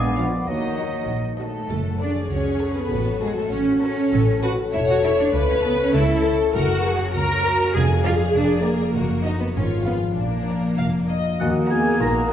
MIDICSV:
0, 0, Header, 1, 14, 480
1, 0, Start_track
1, 0, Key_signature, 3, "minor"
1, 0, Tempo, 611621
1, 377, Time_signature, 2, 2, 24, 8
1, 1818, Tempo, 603015
1, 5183, Key_signature, -6, "minor"
1, 7098, Tempo, 612245
1, 9747, End_track
2, 0, Start_track
2, 0, Title_t, "Flute"
2, 0, Program_c, 0, 73
2, 0, Note_on_c, 0, 77, 51
2, 377, Note_on_c, 0, 78, 42
2, 389, Note_off_c, 0, 77, 0
2, 1100, Note_off_c, 0, 78, 0
2, 9022, Note_on_c, 0, 78, 55
2, 9244, Note_off_c, 0, 78, 0
2, 9255, Note_on_c, 0, 80, 60
2, 9497, Note_on_c, 0, 82, 63
2, 9509, Note_off_c, 0, 80, 0
2, 9728, Note_off_c, 0, 82, 0
2, 9747, End_track
3, 0, Start_track
3, 0, Title_t, "Oboe"
3, 0, Program_c, 1, 68
3, 0, Note_on_c, 1, 74, 50
3, 374, Note_on_c, 1, 75, 44
3, 386, Note_off_c, 1, 74, 0
3, 1098, Note_off_c, 1, 75, 0
3, 9017, Note_on_c, 1, 78, 53
3, 9126, Note_off_c, 1, 78, 0
3, 9260, Note_on_c, 1, 80, 61
3, 9493, Note_off_c, 1, 80, 0
3, 9500, Note_on_c, 1, 82, 66
3, 9606, Note_off_c, 1, 82, 0
3, 9747, End_track
4, 0, Start_track
4, 0, Title_t, "Violin section"
4, 0, Program_c, 2, 48
4, 0, Note_on_c, 2, 80, 58
4, 130, Note_off_c, 2, 80, 0
4, 130, Note_on_c, 2, 77, 47
4, 193, Note_off_c, 2, 77, 0
4, 365, Note_on_c, 2, 75, 47
4, 843, Note_off_c, 2, 75, 0
4, 1094, Note_on_c, 2, 69, 40
4, 1545, Note_off_c, 2, 69, 0
4, 1576, Note_on_c, 2, 74, 50
4, 1812, Note_off_c, 2, 74, 0
4, 1821, Note_on_c, 2, 73, 48
4, 2174, Note_off_c, 2, 73, 0
4, 2176, Note_on_c, 2, 71, 49
4, 2531, Note_off_c, 2, 71, 0
4, 2540, Note_on_c, 2, 68, 51
4, 2654, Note_on_c, 2, 69, 46
4, 2658, Note_off_c, 2, 68, 0
4, 2772, Note_on_c, 2, 73, 57
4, 2775, Note_off_c, 2, 69, 0
4, 2835, Note_off_c, 2, 73, 0
4, 3012, Note_on_c, 2, 73, 54
4, 3490, Note_off_c, 2, 73, 0
4, 3503, Note_on_c, 2, 78, 62
4, 3567, Note_off_c, 2, 78, 0
4, 3732, Note_on_c, 2, 76, 58
4, 3856, Note_off_c, 2, 76, 0
4, 3860, Note_on_c, 2, 78, 60
4, 3980, Note_off_c, 2, 78, 0
4, 3982, Note_on_c, 2, 76, 59
4, 4101, Note_off_c, 2, 76, 0
4, 4103, Note_on_c, 2, 74, 60
4, 4344, Note_off_c, 2, 74, 0
4, 4347, Note_on_c, 2, 73, 60
4, 4464, Note_off_c, 2, 73, 0
4, 4466, Note_on_c, 2, 71, 64
4, 4583, Note_off_c, 2, 71, 0
4, 4587, Note_on_c, 2, 73, 62
4, 4704, Note_off_c, 2, 73, 0
4, 4706, Note_on_c, 2, 76, 66
4, 4770, Note_off_c, 2, 76, 0
4, 5183, Note_on_c, 2, 78, 76
4, 5629, Note_off_c, 2, 78, 0
4, 5653, Note_on_c, 2, 82, 79
4, 6124, Note_off_c, 2, 82, 0
4, 6128, Note_on_c, 2, 80, 69
4, 6365, Note_on_c, 2, 77, 59
4, 6366, Note_off_c, 2, 80, 0
4, 6608, Note_on_c, 2, 74, 63
4, 6610, Note_off_c, 2, 77, 0
4, 6841, Note_on_c, 2, 70, 54
4, 6846, Note_off_c, 2, 74, 0
4, 7317, Note_off_c, 2, 70, 0
4, 7323, Note_on_c, 2, 75, 55
4, 7373, Note_off_c, 2, 75, 0
4, 7447, Note_on_c, 2, 71, 46
4, 7496, Note_off_c, 2, 71, 0
4, 7560, Note_on_c, 2, 73, 52
4, 7802, Note_off_c, 2, 73, 0
4, 7805, Note_on_c, 2, 71, 43
4, 7867, Note_off_c, 2, 71, 0
4, 8041, Note_on_c, 2, 70, 44
4, 8760, Note_off_c, 2, 70, 0
4, 9253, Note_on_c, 2, 75, 51
4, 9254, Note_off_c, 2, 75, 0
4, 9254, Note_on_c, 2, 75, 50
4, 9434, Note_off_c, 2, 75, 0
4, 9747, End_track
5, 0, Start_track
5, 0, Title_t, "Violin section"
5, 0, Program_c, 3, 48
5, 133, Note_on_c, 3, 74, 43
5, 314, Note_off_c, 3, 74, 0
5, 618, Note_on_c, 3, 75, 38
5, 797, Note_off_c, 3, 75, 0
5, 1098, Note_on_c, 3, 75, 39
5, 1278, Note_off_c, 3, 75, 0
5, 1574, Note_on_c, 3, 69, 44
5, 1754, Note_off_c, 3, 69, 0
5, 2058, Note_on_c, 3, 69, 43
5, 2238, Note_off_c, 3, 69, 0
5, 2537, Note_on_c, 3, 69, 42
5, 2718, Note_off_c, 3, 69, 0
5, 3018, Note_on_c, 3, 69, 53
5, 3199, Note_off_c, 3, 69, 0
5, 3505, Note_on_c, 3, 69, 48
5, 3683, Note_off_c, 3, 69, 0
5, 3982, Note_on_c, 3, 69, 50
5, 4162, Note_off_c, 3, 69, 0
5, 4461, Note_on_c, 3, 69, 52
5, 4641, Note_off_c, 3, 69, 0
5, 4944, Note_on_c, 3, 69, 56
5, 5122, Note_off_c, 3, 69, 0
5, 5420, Note_on_c, 3, 70, 53
5, 5599, Note_off_c, 3, 70, 0
5, 5900, Note_on_c, 3, 70, 59
5, 6077, Note_off_c, 3, 70, 0
5, 6375, Note_on_c, 3, 74, 56
5, 6553, Note_off_c, 3, 74, 0
5, 6849, Note_on_c, 3, 74, 58
5, 7031, Note_off_c, 3, 74, 0
5, 7331, Note_on_c, 3, 75, 51
5, 7510, Note_off_c, 3, 75, 0
5, 7808, Note_on_c, 3, 77, 47
5, 7990, Note_off_c, 3, 77, 0
5, 8298, Note_on_c, 3, 74, 38
5, 8478, Note_off_c, 3, 74, 0
5, 8533, Note_on_c, 3, 77, 45
5, 8596, Note_off_c, 3, 77, 0
5, 8777, Note_on_c, 3, 75, 43
5, 9015, Note_off_c, 3, 75, 0
5, 9257, Note_on_c, 3, 82, 52
5, 9436, Note_off_c, 3, 82, 0
5, 9747, End_track
6, 0, Start_track
6, 0, Title_t, "French horn section"
6, 0, Program_c, 4, 60
6, 0, Note_on_c, 4, 59, 57
6, 0, Note_on_c, 4, 62, 49
6, 242, Note_off_c, 4, 59, 0
6, 242, Note_off_c, 4, 62, 0
6, 376, Note_on_c, 4, 66, 37
6, 378, Note_on_c, 4, 58, 38
6, 1084, Note_off_c, 4, 66, 0
6, 1086, Note_off_c, 4, 58, 0
6, 9014, Note_on_c, 4, 66, 74
6, 9240, Note_off_c, 4, 66, 0
6, 9257, Note_on_c, 4, 68, 72
6, 9482, Note_on_c, 4, 70, 72
6, 9491, Note_off_c, 4, 68, 0
6, 9593, Note_off_c, 4, 70, 0
6, 9747, End_track
7, 0, Start_track
7, 0, Title_t, "Viola section"
7, 0, Program_c, 5, 48
7, 138, Note_on_c, 5, 65, 47
7, 140, Note_on_c, 5, 59, 46
7, 316, Note_off_c, 5, 65, 0
7, 317, Note_off_c, 5, 59, 0
7, 621, Note_on_c, 5, 66, 40
7, 622, Note_on_c, 5, 58, 41
7, 799, Note_off_c, 5, 58, 0
7, 799, Note_off_c, 5, 66, 0
7, 1102, Note_on_c, 5, 66, 41
7, 1103, Note_on_c, 5, 58, 42
7, 1280, Note_off_c, 5, 58, 0
7, 1280, Note_off_c, 5, 66, 0
7, 1339, Note_on_c, 5, 69, 49
7, 1402, Note_off_c, 5, 69, 0
7, 1579, Note_on_c, 5, 68, 48
7, 2286, Note_off_c, 5, 68, 0
7, 2305, Note_on_c, 5, 66, 52
7, 3256, Note_on_c, 5, 69, 59
7, 3265, Note_off_c, 5, 66, 0
7, 3320, Note_off_c, 5, 69, 0
7, 3494, Note_on_c, 5, 71, 54
7, 3558, Note_off_c, 5, 71, 0
7, 3738, Note_on_c, 5, 73, 65
7, 4212, Note_off_c, 5, 73, 0
7, 4222, Note_on_c, 5, 71, 74
7, 4694, Note_off_c, 5, 71, 0
7, 4706, Note_on_c, 5, 69, 69
7, 5182, Note_on_c, 5, 70, 68
7, 5184, Note_off_c, 5, 69, 0
7, 5417, Note_off_c, 5, 70, 0
7, 5419, Note_on_c, 5, 68, 65
7, 5655, Note_off_c, 5, 68, 0
7, 5661, Note_on_c, 5, 66, 55
7, 5886, Note_off_c, 5, 66, 0
7, 5896, Note_on_c, 5, 66, 64
7, 6131, Note_off_c, 5, 66, 0
7, 6132, Note_on_c, 5, 68, 74
7, 7093, Note_off_c, 5, 68, 0
7, 7093, Note_on_c, 5, 66, 53
7, 7562, Note_off_c, 5, 66, 0
7, 7574, Note_on_c, 5, 65, 50
7, 8046, Note_off_c, 5, 65, 0
7, 8049, Note_on_c, 5, 62, 41
7, 8764, Note_off_c, 5, 62, 0
7, 9013, Note_on_c, 5, 58, 72
7, 9747, Note_off_c, 5, 58, 0
7, 9747, End_track
8, 0, Start_track
8, 0, Title_t, "Clarinet"
8, 0, Program_c, 6, 71
8, 145, Note_on_c, 6, 65, 53
8, 252, Note_off_c, 6, 65, 0
8, 388, Note_on_c, 6, 63, 52
8, 855, Note_off_c, 6, 63, 0
8, 9020, Note_on_c, 6, 75, 50
8, 9747, Note_off_c, 6, 75, 0
8, 9747, End_track
9, 0, Start_track
9, 0, Title_t, "Harp"
9, 0, Program_c, 7, 46
9, 0, Note_on_c, 7, 46, 50
9, 0, Note_on_c, 7, 71, 45
9, 132, Note_off_c, 7, 71, 0
9, 138, Note_on_c, 7, 62, 30
9, 144, Note_on_c, 7, 71, 36
9, 374, Note_on_c, 7, 51, 35
9, 397, Note_off_c, 7, 46, 0
9, 398, Note_off_c, 7, 62, 0
9, 399, Note_off_c, 7, 71, 0
9, 616, Note_on_c, 7, 54, 30
9, 852, Note_on_c, 7, 63, 29
9, 1099, Note_on_c, 7, 66, 29
9, 1338, Note_on_c, 7, 42, 43
9, 1356, Note_off_c, 7, 63, 0
9, 1357, Note_off_c, 7, 51, 0
9, 1482, Note_off_c, 7, 54, 0
9, 1492, Note_on_c, 7, 54, 31
9, 1656, Note_on_c, 7, 61, 34
9, 1806, Note_off_c, 7, 66, 0
9, 1815, Note_on_c, 7, 66, 38
9, 1971, Note_on_c, 7, 73, 37
9, 2133, Note_on_c, 7, 69, 40
9, 2293, Note_on_c, 7, 45, 40
9, 2318, Note_off_c, 7, 42, 0
9, 2440, Note_off_c, 7, 54, 0
9, 2450, Note_on_c, 7, 54, 34
9, 2605, Note_off_c, 7, 61, 0
9, 2614, Note_on_c, 7, 61, 37
9, 2765, Note_off_c, 7, 66, 0
9, 2775, Note_on_c, 7, 66, 46
9, 2923, Note_off_c, 7, 73, 0
9, 2933, Note_on_c, 7, 73, 43
9, 3088, Note_off_c, 7, 69, 0
9, 3097, Note_on_c, 7, 69, 43
9, 3248, Note_off_c, 7, 45, 0
9, 3257, Note_on_c, 7, 45, 48
9, 3277, Note_off_c, 7, 54, 0
9, 3279, Note_off_c, 7, 66, 0
9, 3417, Note_on_c, 7, 57, 39
9, 3571, Note_off_c, 7, 61, 0
9, 3580, Note_on_c, 7, 61, 39
9, 3727, Note_off_c, 7, 69, 0
9, 3737, Note_on_c, 7, 69, 46
9, 3888, Note_off_c, 7, 73, 0
9, 3897, Note_on_c, 7, 73, 45
9, 4050, Note_off_c, 7, 69, 0
9, 4060, Note_on_c, 7, 69, 45
9, 4220, Note_on_c, 7, 49, 52
9, 4241, Note_off_c, 7, 45, 0
9, 4372, Note_off_c, 7, 61, 0
9, 4381, Note_on_c, 7, 61, 44
9, 4534, Note_off_c, 7, 69, 0
9, 4543, Note_on_c, 7, 69, 47
9, 4694, Note_off_c, 7, 73, 0
9, 4703, Note_on_c, 7, 73, 54
9, 4864, Note_on_c, 7, 81, 48
9, 5010, Note_off_c, 7, 69, 0
9, 5020, Note_on_c, 7, 69, 44
9, 5184, Note_on_c, 7, 42, 56
9, 5199, Note_off_c, 7, 57, 0
9, 5200, Note_off_c, 7, 49, 0
9, 5200, Note_off_c, 7, 69, 0
9, 5202, Note_off_c, 7, 81, 0
9, 5346, Note_on_c, 7, 58, 46
9, 5495, Note_off_c, 7, 61, 0
9, 5505, Note_on_c, 7, 61, 44
9, 5662, Note_on_c, 7, 70, 49
9, 5812, Note_off_c, 7, 73, 0
9, 5821, Note_on_c, 7, 73, 51
9, 5981, Note_on_c, 7, 66, 46
9, 6143, Note_on_c, 7, 41, 58
9, 6157, Note_off_c, 7, 42, 0
9, 6158, Note_off_c, 7, 61, 0
9, 6158, Note_off_c, 7, 66, 0
9, 6158, Note_off_c, 7, 73, 0
9, 6290, Note_off_c, 7, 58, 0
9, 6300, Note_on_c, 7, 58, 42
9, 6457, Note_on_c, 7, 62, 44
9, 6607, Note_off_c, 7, 70, 0
9, 6617, Note_on_c, 7, 70, 50
9, 6773, Note_on_c, 7, 74, 48
9, 6922, Note_off_c, 7, 70, 0
9, 6932, Note_on_c, 7, 70, 44
9, 7092, Note_on_c, 7, 42, 48
9, 7114, Note_off_c, 7, 74, 0
9, 7115, Note_off_c, 7, 62, 0
9, 7117, Note_off_c, 7, 41, 0
9, 7239, Note_off_c, 7, 58, 0
9, 7249, Note_on_c, 7, 58, 39
9, 7402, Note_off_c, 7, 70, 0
9, 7406, Note_on_c, 7, 63, 37
9, 7414, Note_on_c, 7, 70, 36
9, 7570, Note_on_c, 7, 44, 48
9, 7589, Note_off_c, 7, 58, 0
9, 7590, Note_off_c, 7, 42, 0
9, 7590, Note_off_c, 7, 63, 0
9, 7591, Note_off_c, 7, 70, 0
9, 7730, Note_on_c, 7, 53, 36
9, 7890, Note_on_c, 7, 65, 29
9, 7896, Note_on_c, 7, 68, 32
9, 8055, Note_on_c, 7, 46, 35
9, 8073, Note_off_c, 7, 44, 0
9, 8075, Note_off_c, 7, 68, 0
9, 8203, Note_off_c, 7, 53, 0
9, 8213, Note_on_c, 7, 53, 30
9, 8374, Note_on_c, 7, 62, 32
9, 8524, Note_off_c, 7, 65, 0
9, 8534, Note_on_c, 7, 65, 35
9, 8694, Note_on_c, 7, 74, 34
9, 8847, Note_off_c, 7, 65, 0
9, 8856, Note_on_c, 7, 65, 35
9, 9016, Note_on_c, 7, 51, 46
9, 9038, Note_off_c, 7, 65, 0
9, 9038, Note_off_c, 7, 74, 0
9, 9040, Note_off_c, 7, 53, 0
9, 9040, Note_off_c, 7, 62, 0
9, 9041, Note_off_c, 7, 46, 0
9, 9137, Note_on_c, 7, 63, 39
9, 9253, Note_on_c, 7, 66, 45
9, 9375, Note_on_c, 7, 75, 43
9, 9483, Note_off_c, 7, 66, 0
9, 9493, Note_on_c, 7, 66, 51
9, 9616, Note_on_c, 7, 78, 46
9, 9726, Note_off_c, 7, 75, 0
9, 9747, Note_off_c, 7, 51, 0
9, 9747, Note_off_c, 7, 63, 0
9, 9747, Note_off_c, 7, 66, 0
9, 9747, Note_off_c, 7, 78, 0
9, 9747, End_track
10, 0, Start_track
10, 0, Title_t, "Cello section"
10, 0, Program_c, 8, 48
10, 0, Note_on_c, 8, 56, 58
10, 138, Note_on_c, 8, 53, 43
10, 139, Note_off_c, 8, 56, 0
10, 200, Note_off_c, 8, 53, 0
10, 379, Note_on_c, 8, 51, 42
10, 850, Note_off_c, 8, 51, 0
10, 1102, Note_on_c, 8, 57, 43
10, 1549, Note_off_c, 8, 57, 0
10, 1578, Note_on_c, 8, 62, 63
10, 1641, Note_off_c, 8, 62, 0
10, 1815, Note_on_c, 8, 61, 49
10, 2171, Note_off_c, 8, 61, 0
10, 2177, Note_on_c, 8, 59, 56
10, 2539, Note_off_c, 8, 59, 0
10, 2539, Note_on_c, 8, 56, 62
10, 2658, Note_off_c, 8, 56, 0
10, 2661, Note_on_c, 8, 57, 59
10, 2779, Note_off_c, 8, 57, 0
10, 2780, Note_on_c, 8, 61, 68
10, 3006, Note_off_c, 8, 61, 0
10, 3015, Note_on_c, 8, 61, 65
10, 3491, Note_off_c, 8, 61, 0
10, 3500, Note_on_c, 8, 66, 73
10, 3563, Note_off_c, 8, 66, 0
10, 3741, Note_on_c, 8, 64, 67
10, 3789, Note_off_c, 8, 64, 0
10, 3870, Note_on_c, 8, 66, 73
10, 3917, Note_off_c, 8, 66, 0
10, 3984, Note_on_c, 8, 64, 69
10, 4032, Note_off_c, 8, 64, 0
10, 4106, Note_on_c, 8, 62, 80
10, 4169, Note_off_c, 8, 62, 0
10, 4348, Note_on_c, 8, 61, 71
10, 4396, Note_off_c, 8, 61, 0
10, 4467, Note_on_c, 8, 59, 75
10, 4584, Note_off_c, 8, 59, 0
10, 4594, Note_on_c, 8, 61, 69
10, 4707, Note_off_c, 8, 61, 0
10, 4713, Note_on_c, 8, 64, 77
10, 4948, Note_off_c, 8, 64, 0
10, 5189, Note_on_c, 8, 66, 74
10, 5632, Note_off_c, 8, 66, 0
10, 5666, Note_on_c, 8, 70, 83
10, 6131, Note_off_c, 8, 70, 0
10, 6140, Note_on_c, 8, 68, 73
10, 6204, Note_off_c, 8, 68, 0
10, 6382, Note_on_c, 8, 65, 81
10, 6445, Note_off_c, 8, 65, 0
10, 6618, Note_on_c, 8, 62, 68
10, 6851, Note_off_c, 8, 62, 0
10, 6856, Note_on_c, 8, 58, 61
10, 7325, Note_off_c, 8, 58, 0
10, 7332, Note_on_c, 8, 63, 61
10, 7452, Note_off_c, 8, 63, 0
10, 7457, Note_on_c, 8, 59, 61
10, 7504, Note_off_c, 8, 59, 0
10, 7571, Note_on_c, 8, 61, 65
10, 7634, Note_off_c, 8, 61, 0
10, 7811, Note_on_c, 8, 59, 51
10, 7874, Note_off_c, 8, 59, 0
10, 8052, Note_on_c, 8, 58, 50
10, 8765, Note_off_c, 8, 58, 0
10, 9021, Note_on_c, 8, 39, 60
10, 9398, Note_off_c, 8, 39, 0
10, 9498, Note_on_c, 8, 46, 65
10, 9747, Note_off_c, 8, 46, 0
10, 9747, End_track
11, 0, Start_track
11, 0, Title_t, "Marimba"
11, 0, Program_c, 10, 12
11, 9028, Note_on_c, 10, 58, 61
11, 9247, Note_off_c, 10, 58, 0
11, 9264, Note_on_c, 10, 59, 53
11, 9483, Note_off_c, 10, 59, 0
11, 9493, Note_on_c, 10, 63, 65
11, 9716, Note_off_c, 10, 63, 0
11, 9747, End_track
12, 0, Start_track
12, 0, Title_t, "Bassoon"
12, 0, Program_c, 11, 70
12, 0, Note_on_c, 11, 59, 58
12, 384, Note_on_c, 11, 54, 43
12, 395, Note_off_c, 11, 59, 0
12, 1103, Note_off_c, 11, 54, 0
12, 9023, Note_on_c, 11, 58, 51
12, 9747, Note_off_c, 11, 58, 0
12, 9747, End_track
13, 0, Start_track
13, 0, Title_t, "Double bass section"
13, 0, Program_c, 12, 48
13, 0, Note_on_c, 12, 34, 57
13, 276, Note_off_c, 12, 34, 0
13, 379, Note_on_c, 12, 39, 48
13, 759, Note_off_c, 12, 39, 0
13, 860, Note_on_c, 12, 34, 43
13, 1240, Note_off_c, 12, 34, 0
13, 1340, Note_on_c, 12, 30, 49
13, 1718, Note_off_c, 12, 30, 0
13, 1820, Note_on_c, 12, 37, 47
13, 2201, Note_off_c, 12, 37, 0
13, 2302, Note_on_c, 12, 33, 57
13, 2681, Note_off_c, 12, 33, 0
13, 2781, Note_on_c, 12, 33, 50
13, 3162, Note_off_c, 12, 33, 0
13, 3262, Note_on_c, 12, 33, 67
13, 3643, Note_off_c, 12, 33, 0
13, 3743, Note_on_c, 12, 28, 58
13, 4124, Note_off_c, 12, 28, 0
13, 4229, Note_on_c, 12, 37, 67
13, 4607, Note_off_c, 12, 37, 0
13, 4709, Note_on_c, 12, 37, 68
13, 5085, Note_off_c, 12, 37, 0
13, 5186, Note_on_c, 12, 30, 69
13, 5563, Note_off_c, 12, 30, 0
13, 5665, Note_on_c, 12, 37, 70
13, 6040, Note_off_c, 12, 37, 0
13, 6142, Note_on_c, 12, 29, 72
13, 6517, Note_off_c, 12, 29, 0
13, 6619, Note_on_c, 12, 29, 58
13, 6997, Note_off_c, 12, 29, 0
13, 7100, Note_on_c, 12, 30, 61
13, 7475, Note_off_c, 12, 30, 0
13, 7575, Note_on_c, 12, 32, 52
13, 7955, Note_off_c, 12, 32, 0
13, 8058, Note_on_c, 12, 34, 50
13, 8439, Note_off_c, 12, 34, 0
13, 8540, Note_on_c, 12, 29, 42
13, 8922, Note_off_c, 12, 29, 0
13, 9025, Note_on_c, 12, 39, 64
13, 9400, Note_off_c, 12, 39, 0
13, 9498, Note_on_c, 12, 34, 67
13, 9747, Note_off_c, 12, 34, 0
13, 9747, End_track
14, 0, Start_track
14, 0, Title_t, "Drums"
14, 1339, Note_on_c, 9, 81, 35
14, 1417, Note_off_c, 9, 81, 0
14, 9747, End_track
0, 0, End_of_file